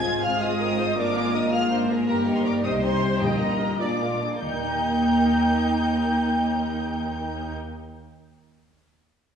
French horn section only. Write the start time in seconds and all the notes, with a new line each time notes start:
Already playing: G#3 F4
0.97 A#3
2.08 D#4
2.64 G3
3.81 G#3 F4
4.41 A#3 D#4